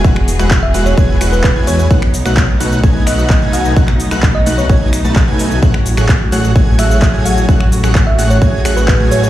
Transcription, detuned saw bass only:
X:1
M:4/4
L:1/16
Q:1/4=129
K:Bmix
V:1 name="Detuned saw bass" clef=bass
E,,,3 E,,,3 E,,,2 E,,,2 E,,,3 E,,3 | B,,,3 B,,,3 B,,,2 B,,,2 B,,,3 B,,,3 | B,,,3 B,,,3 B,,,2 B,,,3 B,,,2 B,,,3 | A,,,3 A,,,3 A,,,2 A,,,2 A,,,3 A,,,3 |
A,,,3 A,,,3 A,,,2 A,,,2 A,,,3 A,,3 |]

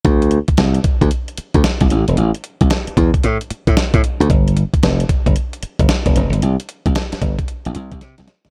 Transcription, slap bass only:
X:1
M:4/4
L:1/16
Q:"Swing 16ths" 1/4=113
K:Cmix
V:1 name="Slap bass" clef=bass
D,,3 z C,,2 z D,, z3 D,, z C,, A,,, E,,, | A,,, z2 C,, z2 E,, z A,, z2 A,, z A,, z D,, | G,,,3 z F,,,2 z G,,, z3 G,,, z F,,, F,,, G,,, | C,, z2 C,, z2 G,,, z2 B,,, C,, C,, C, C,, z G,,, |]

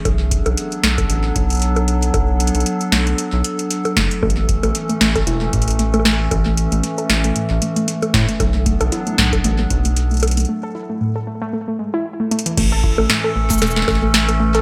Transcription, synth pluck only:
X:1
M:4/4
L:1/16
Q:"Swing 16ths" 1/4=115
K:A
V:1 name="Synth pluck"
z16 | z16 | A, A, z A, z A, A, A E A, A,, A A, A, A, A, | z A, z A, A, A E A, A,, A A, A, A, A, z A, |
z A, A, A E A, A,, A A, A, A, A, z A, z A, | A, A E A, A,, A A, A, A, A, G, E z A, A, E, | A, A E A, A,, A A, A, A, A, z A, z A, A, A |]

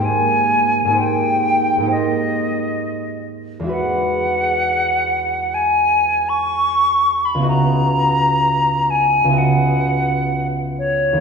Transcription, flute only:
X:1
M:4/4
L:1/16
Q:1/4=64
K:Elyd
V:1 name="Flute"
g4 =g4 d6 z2 | f8 g3 c'4 b | a6 g2 f6 c2 |]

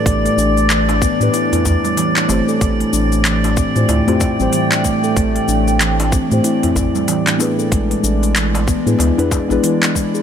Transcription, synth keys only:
X:1
M:4/4
L:1/16
Q:"Swing 16ths" 1/4=94
K:Flyd
V:1 name="Synth keys"
[A,DGB]6- [A,DGB] [A,DGB]6- [A,DGB] [A,CGc]2- | [A,CGc]6- [A,CGc] [A,CFGc]2 [A,CFGc]2 [A,CGc]4- [A,CGc]- | [A,CGc]6- [A,CGc] [A,CGc]6- [A,CGc] [B,DE^GB]2- | [B,DE^GB]6- [B,DEGB] [B,DEGB]2 [B,DEGB]2 [B,DEGB]4- [B,DEGB] |]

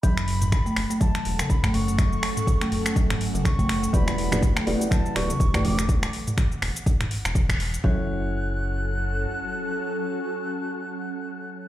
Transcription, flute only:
X:1
M:4/4
L:1/8
Q:"Swing 16ths" 1/4=123
K:F#m
V:1 name="Flute"
b4 a2 b c'- | c'4- c' z c'2 | b3 z a c'2 d' | z8 |
f'8- | f'8 |]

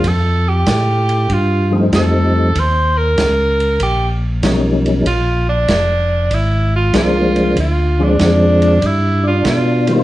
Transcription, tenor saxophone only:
X:1
M:4/4
L:1/16
Q:"Swing" 1/4=96
K:Fdor
V:1 name="Tenor saxophone"
=A2 G6 F2 z2 A4 | c2 B6 G2 z6 | F2 D6 =E2 F2 F4 | F2 D6 =E2 F2 F3 z |]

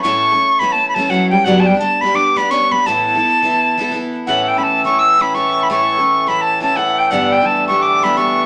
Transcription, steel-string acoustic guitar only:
X:1
M:4/4
L:1/16
Q:"Swing" 1/4=170
K:Amix
V:1 name="Steel-string acoustic guitar"
[A,,E,A,CA]3 [A,CA]3 [E,A,CA]4 [E,A,CA]2 [E,A,CA]4 | [G,,D,G,B,DG]3 [G,B,DG]3 [G,B,DG]4 [G,B,DG]2 [G,B,DG]4 | [A,,E,B,EA]3 [B,EA]3 [E,B,EA]4 [E,B,EA]2 [E,B,EA]4 | [A,,E,A,CA]3 [A,CA]3 [E,A,CA]4 [E,A,CA]2 [E,A,CA]4 |
[A,,E,A,CA]3 [A,CA]3 [E,A,CA]4 [E,A,CA]2 [E,A,CA]4 | [G,,D,G,B,DG]3 [G,DG]3 [G,B,DG]4 [G,B,DG]2 [G,B,DG]4 |]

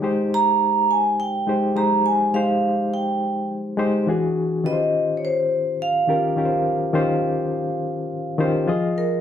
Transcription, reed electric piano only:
X:1
M:4/4
L:1/8
Q:"Swing 16ths" 1/4=104
K:Ab
V:1 name="Reed electric piano"
[A,EGc]4 z [A,EGc] [A,EGc]2 | [A,EGc]4 z [A,EGc] [=E,=D^F^G]2 | [E,DFG=Bc]4 z [E,DFG_B] [E,DFGBc]2 | [E,DFGc]4 z [E,DFGc] [F,FAe]2 |]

